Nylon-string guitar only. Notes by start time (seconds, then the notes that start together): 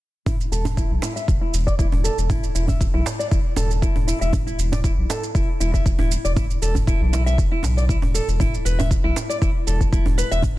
0.26 E4
0.52 A4
0.77 E4
1.03 E4
1.16 E5
1.41 E4
1.67 D5
1.79 E4
2.04 A4
2.29 E4
2.55 E4
2.68 E5
2.94 E4
3.19 D5
3.31 E4
3.57 A4
3.82 E4
4.07 E4
4.21 E5
4.47 E4
4.72 D5
4.84 E4
5.09 A4
5.35 E4
5.60 E4
5.74 E5
5.99 E4
6.25 D5
6.37 E4
6.62 A4
6.88 E4
7.13 E4
7.26 E5
7.52 E4
7.77 D5
7.89 E4
8.14 A4
8.40 E4
8.65 B4
8.79 E5
9.04 E4
9.29 D5
9.42 E4
9.67 A4
9.92 E4
10.18 B4
10.31 E5